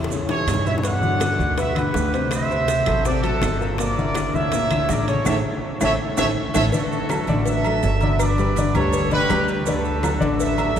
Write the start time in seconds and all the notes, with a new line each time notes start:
Already playing: E2
0.04 high bongo
0.10 C#3 C#4 C#5, high conga, low conga, maracas
0.29 E3 E4 G4 A4 C#5, low bongo, high conga, high timbale, maracas
0.47 G2, high conga, high timbale, low timbale, claves, maracas
0.54 low bongo
0.66 B2 B3 B4 C#5 E5, high conga, maracas
0.78 low bongo
0.83 B2 B3 B4 D5 F#5, high bongo, high conga, high timbale, maracas
1.01 D3 D4 F#4, high bongo, high conga, maracas
1.20 high bongo, high conga, high timbale, low timbale, claves, maracas
1.38 D2 D3 D4 F#4, high bongo, maracas
1.57 B2 B3 B4 E5, high bongo, high conga, high timbale, maracas
1.75 D3 D4 G4 B4 F#5, high bongo, high conga, high timbale, claves, maracas
1.94 D2, high bongo, low bongo, high conga, low timbale, maracas
2.13 C3 C4 C5, high conga, high timbale, maracas
2.31 C5 E5, high bongo, high conga, high timbale, claves, maracas
2.49 C3 C4 C5, high bongo, high conga, maracas
2.68 high bongo, high conga, high timbale, low timbale, maracas
2.86 A1 F#3 F#4 A4, high conga, low conga, high timbale, claves, maracas
3.05 C3 C4 A4 C5 D5, high bongo, high conga, low conga, maracas
3.23 F#3 F#4 A4, high bongo, high conga, high timbale, maracas
3.41 G1, high bongo, low bongo, high conga, high timbale, low timbale, claves, maracas
3.60 A#2 A#3 A#4, high bongo, high conga, maracas
3.78 A#2 A#3 A#4 D5, high bongo, high conga, high timbale, maracas
3.97 D3 D4 E4, high bongo, high conga, maracas
4.15 high bongo, high conga, high timbale, low timbale, claves, maracas
4.34 D2 D3 D4 E4 C#5 E5, high bongo, maracas
4.52 A#2 A#3 A#4, high bongo, high conga, high timbale, maracas
4.70 D3 D4 E4, high bongo, high conga, high timbale, claves, maracas
4.89 A1 A#4 D5, high bongo, low bongo, high conga, low timbale, maracas
5.08 C#3 C#4 A4 C#5, high conga, high timbale, maracas
5.25 A1 A3 C#4 E4 A4 C#5 E5, low bongo, high conga, high timbale, claves, maracas
5.81 A1 A3 C#4 E4 A4 C#5 E5, low bongo, high conga, high timbale, claves, maracas
6.17 A1 A3 C#4 E4 A4 C#5 E5, low bongo, high conga, high timbale, claves, maracas
6.54 A1 A3 C#4 E4 A4 C#5 E5, low bongo, high conga, high timbale, claves, maracas
6.72 D3 D4 F#4 A4 D5, cowbell, high conga, low agogo, maracas
6.92 high conga, maracas
7.09 F#3 F#4 A4, cowbell, high conga, low timbale, low agogo, claves, maracas
7.27 A1 D3 D4 D5, cowbell, low agogo, maracas
7.46 A4 E5, cowbell, high conga, maracas
7.64 F#3 F#4 A4, high conga, low agogo, claves, maracas
7.83 G1, cowbell, high conga, low timbale, maracas
8.01 D3 D4 D5, cowbell, high conga, low agogo, maracas
8.19 B4 D5, cowbell, high conga, low agogo, claves, maracas
8.38 G3 G4 B4, high conga, low agogo, maracas
8.56 D3 D4 D5, cowbell, high conga, low timbale, low agogo, maracas
8.74 D2 G3 G4 A4 B4 C#5, cowbell, high conga, low conga, low agogo, claves, maracas
8.93 cowbell, high conga, maracas
9.11 D3 D4 G4 B4 D5, high conga, low agogo, maracas
9.30 D2 G3 G4 B4, cowbell, high conga, low timbale, low agogo, claves, maracas
9.48 cowbell, high conga, low agogo, maracas
9.66 D3 D4 F#4 A4 D5, cowbell, high conga, low agogo, maracas
9.85 high conga, maracas
10.03 F#3 F#4 A4, cowbell, high conga, low timbale, low agogo, claves, maracas
10.20 A1 D3 D4 D5, cowbell, low agogo, maracas
10.40 A4 E5, cowbell, high conga, maracas
10.58 F#3 F#4 A4, high conga, low agogo, claves, maracas
10.76 G1, cowbell, maracas